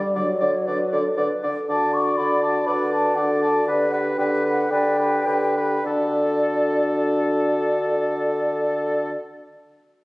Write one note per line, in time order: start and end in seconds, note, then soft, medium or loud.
0.00 0.17 G3 medium
0.00 1.39 D5 soft
0.15 0.27 D3 soft
0.15 1.43 F#3 medium
0.15 0.27 A4 soft
0.15 0.27 D5 soft
0.40 0.53 D3 soft
0.40 0.68 C#5 medium
0.40 0.52 D5 soft
0.66 0.79 D3 soft
0.66 0.91 B4 soft
0.66 0.78 D5 soft
0.92 1.04 D3 soft
0.92 1.18 A4 medium
0.92 1.04 D5 soft
1.17 1.29 D3 soft
1.17 1.42 B4 soft
1.17 1.28 D5 soft
1.43 1.55 D3 soft
1.43 1.68 A4 soft
1.43 1.55 D5 soft
1.68 2.12 D3 soft
1.68 1.93 F#4 soft
1.68 2.68 D5 medium
1.68 1.93 D5 soft
1.68 1.95 A5 medium
1.93 2.17 F#4 soft
1.93 2.17 D5 soft
1.93 2.19 C#6 medium
2.17 2.61 D3 soft
2.17 2.42 F#4 soft
2.17 2.42 D5 soft
2.17 2.41 B5 medium
2.42 2.66 F#4 soft
2.42 2.66 D5 soft
2.42 2.65 A5 medium
2.66 3.10 D3 soft
2.66 2.91 F#4 soft
2.66 3.18 B4 medium
2.66 2.91 D5 soft
2.66 2.72 B5 medium
2.91 3.16 F#4 soft
2.91 3.16 D5 soft
2.91 3.17 A5 medium
3.15 3.61 D3 medium
3.15 3.41 F#4 soft
3.15 3.66 A4 soft
3.15 3.41 D5 soft
3.15 3.41 F#5 medium
3.42 3.67 F#4 soft
3.42 3.67 D5 soft
3.42 3.67 A5 medium
3.66 4.12 D3 soft
3.66 3.92 G4 soft
3.66 4.69 B4 soft
3.66 3.92 B4 soft
3.66 3.90 D5 medium
3.91 4.18 G4 soft
3.91 4.18 B4 soft
3.91 3.97 F#5 medium
4.17 4.64 D3 medium
4.17 4.44 G4 soft
4.17 4.44 B4 soft
4.17 4.23 G5 medium
4.44 4.70 G4 soft
4.44 4.71 B4 soft
4.44 4.71 F#5 medium
4.70 5.20 D3 soft
4.70 4.98 G4 soft
4.70 4.99 B4 soft
4.70 5.28 D5 medium
4.70 5.85 G5 medium
4.99 5.26 G4 soft
4.99 5.27 B4 soft
5.26 5.78 D3 soft
5.26 5.55 G4 soft
5.26 5.55 B4 soft
5.26 5.56 B4 soft
5.56 5.85 G4 soft
5.56 5.85 B4 soft
5.85 9.10 D3 soft
5.85 9.12 D4 soft
5.85 9.11 F#4 soft
5.85 9.12 A4 soft
5.85 9.11 D5 soft